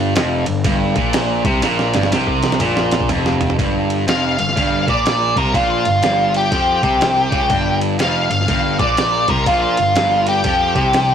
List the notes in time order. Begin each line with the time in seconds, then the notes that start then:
Already playing: G1 G2
0.16 F1 F2, snare, ride
0.46 G1 G2, ride
0.64 G1 G2, kick, ride
0.96 A#1 A#2, kick, ride
1.13 snare, ride
1.45 C2 C3, kick, ride
1.62 A#1 A#2, snare, ride
1.79 snare
1.94 G1 G2, snare, ride
2.03 snare
2.12 C2 C3, snare, ride
2.27 kick
2.43 snare, ride
2.52 snare
2.60 A#1 A#2, mid tom, ride
2.77 snare
2.91 snare, ride
3.00 kick
3.09 F1 F2, floor tom, ride
3.26 snare
3.41 floor tom, ride
3.50 floor tom
3.59 G1 G2, kick, ride
3.90 ride
4.08 F1 F2 F5, snare, ride
4.39 G1 G2 F5, ride
4.49 snare
4.56 G1 G2, kick, ride
4.87 A#1 A#2 D5, kick, ride
5.06 snare, ride
5.36 C2 C3 A#4, kick, ride
5.54 A#1 A#2 F4, kick, ride
5.85 G1 G2, ride
6.03 G1 G2, snare, ride
6.34 G4, ride
6.52 F2 F3, kick, ride
6.83 C2 C3, kick, ride
7.01 snare, ride
7.32 C#2 C#3, kick, ride
7.50 G1 G2, kick, ride
7.81 ride
7.99 F1 F2 F5, snare, ride
8.30 G1 G2 F5, ride
8.41 snare
8.48 G1 G2, kick, ride
8.79 A#1 A#2 D5, kick, ride
8.97 snare, ride
9.28 C2 C3 A#4, kick, ride
9.46 A#1 A#2 F4, kick, ride
9.77 G1 G2, ride
9.95 G1 G2, snare, ride
10.27 G4, ride
10.44 F2 F3, kick, ride
10.75 C2 C3, kick, ride
10.93 snare, ride